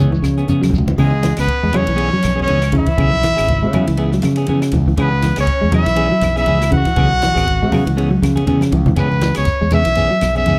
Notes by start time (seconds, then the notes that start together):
Already playing: C#2 E3 B3 C#4 G#4 C#5
0.00 shekere
0.12 E3, muted clean electric guitar stroke, high conga, shekere
0.22 C#3, muted clean electric guitar stroke, kick, snare, closed hi-hat, high conga, claves, shekere
0.37 B3 C#4 G#4, closed hi-hat, shekere
0.48 C#3 B3 C#4 G#4, muted clean electric guitar stroke, closed hi-hat, high conga, shekere
0.62 F#3, snare, high conga, claves, shekere
0.69 C#2, kick, closed hi-hat, low conga
0.74 muted clean electric guitar stroke, shekere
0.78 low conga
0.87 E3, kick, low conga, shekere
0.98 C#2 C#3 E3 B3 C#4 G#4, kick, crash, claves
1.02 G#3
1.13 muted clean electric guitar stroke
1.23 E3, muted clean electric guitar stroke, snare, ride bell, high conga
1.37 C#2 B3 C#4 B4, snare, ride bell, claves
1.47 muted clean electric guitar stroke, kick, ride bell
1.63 E2 G#3
1.72 E3 F#3 B3 C#4 G#4, ride bell, high conga, low conga, claves
1.76 C#4 C#5
1.86 B1 E3, muted clean electric guitar stroke, ride bell
1.96 E3 B3 C#4 G#4, ride bell
2.11 F#3, muted clean electric guitar stroke, high conga
2.23 B1, muted clean electric guitar stroke, snare, ride bell, high conga, claves
2.36 B3 C#4 G#4, high conga
2.42 C#4 C#5
2.47 C#2 E3 B3 C#4 G#4, ride bell, high conga
2.62 snare, claves
2.72 C#3 E3, muted clean electric guitar stroke, kick, ride bell, low conga
2.78 E4 E5
2.86 E3, kick, ride bell
2.97 B1 C#3 E3 B3 C#4 G#4, kick, ride bell, claves
3.11 muted clean electric guitar stroke, high conga
3.23 E3, muted clean electric guitar stroke, snare, ride bell, high conga
3.37 G#1 C#4 G#4, muted clean electric guitar stroke, snare, claves
3.48 muted clean electric guitar stroke, kick, ride bell, low conga
3.63 C#3 G#3
3.73 E3 F#3 B3 C#4 G#4, ride bell, high conga, low conga, claves
3.87 C#2 E3, muted clean electric guitar stroke, snare, ride bell
3.97 E3 B3 G#4, muted clean electric guitar stroke, ride bell
4.12 F#3, muted clean electric guitar stroke, snare
4.22 C#3, muted clean electric guitar stroke, snare, ride bell, high conga, claves
4.36 B3 C#4 G#4, snare, ride bell
4.47 C#3 E3 B3 C#4 G#4, ride bell, high conga
4.61 muted clean electric guitar stroke, snare, claves
4.72 C#2 E3, muted clean electric guitar stroke, kick, snare, ride bell, low conga
4.86 E3, kick
4.97 C#2 C#3 E3 B3 C#4 G#4 B4, muted clean electric guitar stroke, kick, ride bell, claves
5.11 muted clean electric guitar stroke
5.22 E3, muted clean electric guitar stroke, snare, ride bell, high conga
5.36 C#2 B3 C#4 G#4, snare, ride bell, claves
5.40 C#4 C#5
5.47 muted clean electric guitar stroke, kick, ride bell
5.61 E2 G#3
5.72 E3 F#3 B3 C#4 G#4 E5, ride bell, high conga, low conga, claves
5.77 E4
5.85 B1 E3, muted clean electric guitar stroke, snare, ride bell
5.96 E3 B3 C#4 G#4, ride bell
6.09 F#3, muted clean electric guitar stroke
6.21 B1, muted clean electric guitar stroke, snare, ride bell, high conga, claves
6.36 B3 C#4 E4 G#4 E5, snare
6.46 C#2 E3 C#4 G#4, ride bell, high conga
6.60 muted clean electric guitar stroke, snare, claves
6.70 C#3 E3 F#5, muted clean electric guitar stroke, kick, ride bell, high conga, low conga
6.77 F#4
6.85 E3, kick, snare, ride bell
6.96 B1 C#3 E3 B3 C#4 G#4, kick, ride bell, claves
7.10 muted clean electric guitar stroke
7.20 E3, muted clean electric guitar stroke, snare, ride bell, high conga
7.34 G#1 B3 C#4 G#4, kick, snare, claves
7.46 muted clean electric guitar stroke, kick, ride bell
7.62 C#3 G#3
7.72 E3 F#3 B3 C#4 G#4, open hi-hat, high conga, low conga, claves
7.85 C#2 E3, muted clean electric guitar stroke, ride bell
7.97 E3 B3 C#4 G#4, ride bell
8.11 F#3, muted clean electric guitar stroke
8.22 C#3, muted clean electric guitar stroke, kick, snare, ride bell, high conga, claves
8.36 B3 C#4 G#4, ride bell, high conga
8.47 C#3 E3 B3 C#4 G#4, ride bell, low conga
8.61 muted clean electric guitar stroke, snare, high conga, claves
8.71 C#2 E3, muted clean electric guitar stroke, kick, ride bell
8.86 E3, kick, low conga
8.96 C#2 E3 B3 C#4 G#4 B4, muted clean electric guitar stroke, kick, ride bell, claves, shekere
9.10 muted clean electric guitar stroke, high conga, shekere
9.21 E3, muted clean electric guitar stroke, snare, ride bell, high conga, shekere
9.35 C#2 B3 C#4 G#4 C#5, snare, ride bell, claves, shekere
9.45 muted clean electric guitar stroke, kick, snare, ride bell, shekere
9.61 E2 G#3, shekere
9.71 E3 G#3 B3 C#4 G#4 E5, ride bell, high conga, low conga, claves, shekere
9.85 B1 E3, muted clean electric guitar stroke, snare, ride bell, shekere
9.95 E3 B3 C#4 G#4, snare, ride bell, shekere
10.11 F#3, muted clean electric guitar stroke, shekere
10.21 B1, muted clean electric guitar stroke, snare, ride bell, high conga, claves, shekere
10.35 B3 C#4 G#4 E5, snare, high conga, shekere
10.46 C#2 E3 B3 C#4 G#4, ride bell, high conga, shekere